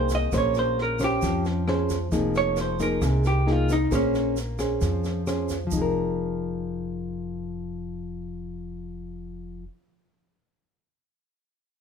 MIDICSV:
0, 0, Header, 1, 5, 480
1, 0, Start_track
1, 0, Key_signature, -4, "minor"
1, 0, Tempo, 450789
1, 339, Time_signature, 4, 2, 24, 8
1, 12571, End_track
2, 0, Start_track
2, 0, Title_t, "Hollow-body jazz guitar"
2, 0, Program_c, 0, 26
2, 0, Note_on_c, 0, 72, 61
2, 129, Note_off_c, 0, 72, 0
2, 159, Note_on_c, 0, 75, 86
2, 362, Note_off_c, 0, 75, 0
2, 401, Note_on_c, 0, 73, 58
2, 603, Note_off_c, 0, 73, 0
2, 628, Note_on_c, 0, 72, 74
2, 836, Note_off_c, 0, 72, 0
2, 877, Note_on_c, 0, 70, 61
2, 1080, Note_off_c, 0, 70, 0
2, 1111, Note_on_c, 0, 67, 81
2, 1532, Note_off_c, 0, 67, 0
2, 2529, Note_on_c, 0, 73, 80
2, 2745, Note_off_c, 0, 73, 0
2, 2780, Note_on_c, 0, 72, 60
2, 2991, Note_off_c, 0, 72, 0
2, 3007, Note_on_c, 0, 70, 82
2, 3259, Note_off_c, 0, 70, 0
2, 3259, Note_on_c, 0, 68, 76
2, 3470, Note_off_c, 0, 68, 0
2, 3484, Note_on_c, 0, 67, 74
2, 3737, Note_off_c, 0, 67, 0
2, 3737, Note_on_c, 0, 65, 73
2, 3949, Note_off_c, 0, 65, 0
2, 3968, Note_on_c, 0, 63, 71
2, 4184, Note_off_c, 0, 63, 0
2, 4207, Note_on_c, 0, 61, 56
2, 4638, Note_off_c, 0, 61, 0
2, 12571, End_track
3, 0, Start_track
3, 0, Title_t, "Nylon-string guitar"
3, 0, Program_c, 1, 24
3, 0, Note_on_c, 1, 48, 52
3, 0, Note_on_c, 1, 58, 46
3, 0, Note_on_c, 1, 63, 48
3, 0, Note_on_c, 1, 68, 50
3, 312, Note_off_c, 1, 58, 0
3, 313, Note_off_c, 1, 63, 0
3, 317, Note_off_c, 1, 68, 0
3, 320, Note_off_c, 1, 48, 0
3, 354, Note_on_c, 1, 58, 46
3, 358, Note_on_c, 1, 61, 47
3, 363, Note_on_c, 1, 68, 47
3, 363, Note_on_c, 1, 72, 58
3, 1029, Note_off_c, 1, 61, 0
3, 1031, Note_off_c, 1, 68, 0
3, 1031, Note_off_c, 1, 72, 0
3, 1060, Note_on_c, 1, 61, 54
3, 1069, Note_on_c, 1, 72, 63
3, 1281, Note_off_c, 1, 58, 0
3, 1308, Note_on_c, 1, 53, 52
3, 1739, Note_off_c, 1, 61, 0
3, 1743, Note_off_c, 1, 72, 0
3, 1791, Note_on_c, 1, 61, 45
3, 1793, Note_on_c, 1, 68, 50
3, 1803, Note_on_c, 1, 72, 57
3, 2092, Note_off_c, 1, 61, 0
3, 2092, Note_off_c, 1, 68, 0
3, 2098, Note_off_c, 1, 72, 0
3, 2237, Note_off_c, 1, 53, 0
3, 2254, Note_on_c, 1, 53, 49
3, 2260, Note_on_c, 1, 58, 46
3, 2262, Note_on_c, 1, 63, 50
3, 2268, Note_on_c, 1, 68, 57
3, 2937, Note_off_c, 1, 63, 0
3, 2938, Note_off_c, 1, 58, 0
3, 2942, Note_off_c, 1, 68, 0
3, 2978, Note_on_c, 1, 58, 54
3, 2982, Note_on_c, 1, 63, 53
3, 2989, Note_on_c, 1, 68, 59
3, 3191, Note_off_c, 1, 53, 0
3, 3217, Note_on_c, 1, 48, 53
3, 3657, Note_off_c, 1, 58, 0
3, 3659, Note_off_c, 1, 63, 0
3, 3663, Note_off_c, 1, 68, 0
3, 3688, Note_on_c, 1, 58, 47
3, 3696, Note_on_c, 1, 63, 53
3, 3699, Note_on_c, 1, 68, 55
3, 4001, Note_off_c, 1, 58, 0
3, 4002, Note_off_c, 1, 63, 0
3, 4006, Note_off_c, 1, 68, 0
3, 4151, Note_off_c, 1, 48, 0
3, 4164, Note_on_c, 1, 58, 48
3, 4166, Note_on_c, 1, 61, 52
3, 4173, Note_on_c, 1, 68, 49
3, 4178, Note_on_c, 1, 72, 52
3, 4645, Note_off_c, 1, 61, 0
3, 4650, Note_off_c, 1, 68, 0
3, 4652, Note_off_c, 1, 72, 0
3, 4893, Note_on_c, 1, 61, 47
3, 4897, Note_on_c, 1, 68, 50
3, 4905, Note_on_c, 1, 72, 52
3, 5105, Note_off_c, 1, 58, 0
3, 5129, Note_on_c, 1, 53, 52
3, 5575, Note_off_c, 1, 61, 0
3, 5577, Note_off_c, 1, 68, 0
3, 5579, Note_off_c, 1, 72, 0
3, 5611, Note_on_c, 1, 68, 44
3, 5613, Note_on_c, 1, 61, 46
3, 5620, Note_on_c, 1, 72, 56
3, 5920, Note_off_c, 1, 68, 0
3, 5923, Note_off_c, 1, 61, 0
3, 5926, Note_off_c, 1, 72, 0
3, 6022, Note_off_c, 1, 53, 0
3, 6035, Note_on_c, 1, 53, 55
3, 6102, Note_on_c, 1, 63, 51
3, 6148, Note_on_c, 1, 68, 54
3, 6194, Note_on_c, 1, 70, 55
3, 10260, Note_off_c, 1, 53, 0
3, 10327, Note_off_c, 1, 63, 0
3, 10373, Note_off_c, 1, 68, 0
3, 10419, Note_off_c, 1, 70, 0
3, 12571, End_track
4, 0, Start_track
4, 0, Title_t, "Upright bass"
4, 0, Program_c, 2, 32
4, 0, Note_on_c, 2, 36, 90
4, 298, Note_off_c, 2, 36, 0
4, 349, Note_on_c, 2, 34, 93
4, 1259, Note_off_c, 2, 34, 0
4, 1308, Note_on_c, 2, 41, 82
4, 2218, Note_off_c, 2, 41, 0
4, 2254, Note_on_c, 2, 29, 81
4, 3171, Note_off_c, 2, 29, 0
4, 3211, Note_on_c, 2, 36, 86
4, 4129, Note_off_c, 2, 36, 0
4, 4173, Note_on_c, 2, 34, 85
4, 5090, Note_off_c, 2, 34, 0
4, 5129, Note_on_c, 2, 41, 87
4, 6049, Note_off_c, 2, 41, 0
4, 6097, Note_on_c, 2, 29, 69
4, 10280, Note_off_c, 2, 29, 0
4, 12571, End_track
5, 0, Start_track
5, 0, Title_t, "Drums"
5, 98, Note_on_c, 9, 82, 60
5, 104, Note_on_c, 9, 36, 21
5, 108, Note_on_c, 9, 38, 23
5, 205, Note_off_c, 9, 82, 0
5, 211, Note_off_c, 9, 36, 0
5, 214, Note_off_c, 9, 38, 0
5, 341, Note_on_c, 9, 82, 57
5, 346, Note_on_c, 9, 36, 55
5, 351, Note_on_c, 9, 37, 50
5, 351, Note_on_c, 9, 38, 21
5, 448, Note_off_c, 9, 82, 0
5, 452, Note_off_c, 9, 36, 0
5, 457, Note_off_c, 9, 37, 0
5, 457, Note_off_c, 9, 38, 0
5, 577, Note_on_c, 9, 82, 22
5, 593, Note_on_c, 9, 38, 21
5, 684, Note_off_c, 9, 82, 0
5, 699, Note_off_c, 9, 38, 0
5, 834, Note_on_c, 9, 38, 20
5, 941, Note_off_c, 9, 38, 0
5, 1055, Note_on_c, 9, 82, 58
5, 1066, Note_on_c, 9, 36, 20
5, 1074, Note_on_c, 9, 37, 50
5, 1074, Note_on_c, 9, 38, 18
5, 1162, Note_off_c, 9, 82, 0
5, 1173, Note_off_c, 9, 36, 0
5, 1181, Note_off_c, 9, 37, 0
5, 1181, Note_off_c, 9, 38, 0
5, 1297, Note_on_c, 9, 82, 54
5, 1306, Note_on_c, 9, 36, 60
5, 1310, Note_on_c, 9, 38, 22
5, 1403, Note_off_c, 9, 82, 0
5, 1412, Note_off_c, 9, 36, 0
5, 1417, Note_off_c, 9, 38, 0
5, 1541, Note_on_c, 9, 82, 22
5, 1547, Note_on_c, 9, 38, 21
5, 1648, Note_off_c, 9, 82, 0
5, 1654, Note_off_c, 9, 38, 0
5, 1784, Note_on_c, 9, 37, 56
5, 1784, Note_on_c, 9, 38, 24
5, 1891, Note_off_c, 9, 37, 0
5, 1891, Note_off_c, 9, 38, 0
5, 2019, Note_on_c, 9, 36, 22
5, 2020, Note_on_c, 9, 38, 22
5, 2020, Note_on_c, 9, 82, 57
5, 2126, Note_off_c, 9, 36, 0
5, 2126, Note_off_c, 9, 38, 0
5, 2127, Note_off_c, 9, 82, 0
5, 2256, Note_on_c, 9, 38, 20
5, 2256, Note_on_c, 9, 82, 54
5, 2257, Note_on_c, 9, 36, 53
5, 2363, Note_off_c, 9, 38, 0
5, 2363, Note_off_c, 9, 82, 0
5, 2364, Note_off_c, 9, 36, 0
5, 2500, Note_on_c, 9, 38, 20
5, 2500, Note_on_c, 9, 82, 21
5, 2606, Note_off_c, 9, 38, 0
5, 2606, Note_off_c, 9, 82, 0
5, 2734, Note_on_c, 9, 82, 50
5, 2735, Note_on_c, 9, 37, 49
5, 2735, Note_on_c, 9, 38, 20
5, 2841, Note_off_c, 9, 82, 0
5, 2842, Note_off_c, 9, 37, 0
5, 2842, Note_off_c, 9, 38, 0
5, 2972, Note_on_c, 9, 38, 19
5, 2973, Note_on_c, 9, 36, 19
5, 2978, Note_on_c, 9, 82, 57
5, 3078, Note_off_c, 9, 38, 0
5, 3080, Note_off_c, 9, 36, 0
5, 3085, Note_off_c, 9, 82, 0
5, 3212, Note_on_c, 9, 36, 57
5, 3214, Note_on_c, 9, 37, 57
5, 3214, Note_on_c, 9, 38, 21
5, 3215, Note_on_c, 9, 82, 51
5, 3318, Note_off_c, 9, 36, 0
5, 3320, Note_off_c, 9, 37, 0
5, 3320, Note_off_c, 9, 38, 0
5, 3321, Note_off_c, 9, 82, 0
5, 3452, Note_on_c, 9, 82, 25
5, 3457, Note_on_c, 9, 38, 19
5, 3559, Note_off_c, 9, 82, 0
5, 3564, Note_off_c, 9, 38, 0
5, 3696, Note_on_c, 9, 38, 23
5, 3803, Note_off_c, 9, 38, 0
5, 3930, Note_on_c, 9, 82, 60
5, 3932, Note_on_c, 9, 36, 20
5, 3939, Note_on_c, 9, 38, 21
5, 4036, Note_off_c, 9, 82, 0
5, 4038, Note_off_c, 9, 36, 0
5, 4045, Note_off_c, 9, 38, 0
5, 4170, Note_on_c, 9, 36, 49
5, 4170, Note_on_c, 9, 82, 55
5, 4174, Note_on_c, 9, 37, 50
5, 4174, Note_on_c, 9, 38, 21
5, 4276, Note_off_c, 9, 82, 0
5, 4277, Note_off_c, 9, 36, 0
5, 4281, Note_off_c, 9, 37, 0
5, 4281, Note_off_c, 9, 38, 0
5, 4412, Note_on_c, 9, 38, 20
5, 4415, Note_on_c, 9, 82, 22
5, 4518, Note_off_c, 9, 38, 0
5, 4522, Note_off_c, 9, 82, 0
5, 4649, Note_on_c, 9, 38, 21
5, 4650, Note_on_c, 9, 82, 51
5, 4755, Note_off_c, 9, 38, 0
5, 4756, Note_off_c, 9, 82, 0
5, 4886, Note_on_c, 9, 37, 47
5, 4886, Note_on_c, 9, 38, 19
5, 4887, Note_on_c, 9, 36, 20
5, 4888, Note_on_c, 9, 82, 55
5, 4992, Note_off_c, 9, 37, 0
5, 4992, Note_off_c, 9, 38, 0
5, 4993, Note_off_c, 9, 36, 0
5, 4995, Note_off_c, 9, 82, 0
5, 5125, Note_on_c, 9, 82, 50
5, 5127, Note_on_c, 9, 36, 55
5, 5127, Note_on_c, 9, 38, 23
5, 5232, Note_off_c, 9, 82, 0
5, 5233, Note_off_c, 9, 36, 0
5, 5234, Note_off_c, 9, 38, 0
5, 5367, Note_on_c, 9, 82, 26
5, 5374, Note_on_c, 9, 38, 21
5, 5474, Note_off_c, 9, 82, 0
5, 5481, Note_off_c, 9, 38, 0
5, 5611, Note_on_c, 9, 82, 43
5, 5615, Note_on_c, 9, 37, 51
5, 5615, Note_on_c, 9, 38, 20
5, 5718, Note_off_c, 9, 82, 0
5, 5722, Note_off_c, 9, 37, 0
5, 5722, Note_off_c, 9, 38, 0
5, 5846, Note_on_c, 9, 82, 57
5, 5853, Note_on_c, 9, 36, 20
5, 5857, Note_on_c, 9, 38, 21
5, 5952, Note_off_c, 9, 82, 0
5, 5960, Note_off_c, 9, 36, 0
5, 5963, Note_off_c, 9, 38, 0
5, 6082, Note_on_c, 9, 82, 77
5, 6093, Note_on_c, 9, 36, 57
5, 6189, Note_off_c, 9, 82, 0
5, 6199, Note_off_c, 9, 36, 0
5, 12571, End_track
0, 0, End_of_file